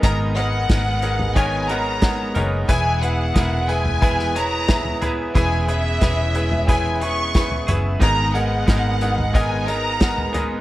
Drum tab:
HH |x-x-x-x-x-x-x-x-|x-x-x-x-x-x-x-x-|x-x-x-x-x-x-x-x-|x-x-x-x-x-x-x-x-|
SD |----o-------o---|----o----o--o---|----o-------o---|----o-------o---|
FT |-------o------o-|-------o-----oo-|-------o-----oo-|-------o-----oo-|
BD |o---o---o---o---|o---o---o---o---|o---o---o---o---|o---o---o---o---|